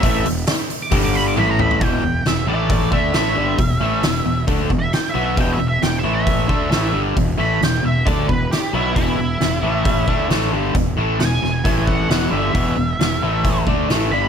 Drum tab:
HH |o-o-o-o-o-o-----|o---o---o---o---|o---o---o---o---|o---o---o---o---|
SD |----o-----------|----o-------o---|----o-------o---|----o-------o---|
T1 |------------o---|----------------|----------------|----------------|
T2 |--------------o-|----------------|----------------|----------------|
FT |---------------o|----------------|----------------|----------------|
BD |o-------o-------|o-------o-o-----|o-------o-o-----|o-------o-o-----|

HH |o---o---o---o---|o---o---o---o---|o---o---o---o---|o---o---o---o---|
SD |----o-------o---|----o-------o---|----o-o-----o---|----o-------o---|
T1 |----------------|----------------|----------------|----------------|
T2 |----------------|----------------|----------------|----------------|
FT |----------------|----------------|----------------|----------------|
BD |o-------o-o-----|o-------o-o-----|o-------o-o-----|o-------o-o-----|